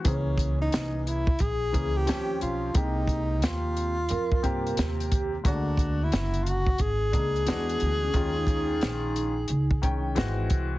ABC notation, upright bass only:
X:1
M:4/4
L:1/8
Q:"Swing 16ths" 1/4=89
K:Ab
V:1 name="Upright bass" clef=bass
D,,2 C,,2 B,,, D,, E,, _C,, | C,,2 E,,2 F,, G,, E,,2 | =D,,2 ^F,,,2 A,,, ^C,, =E,, D,, | E,,2 B,,,2 D,, C,, A,,, C,, |]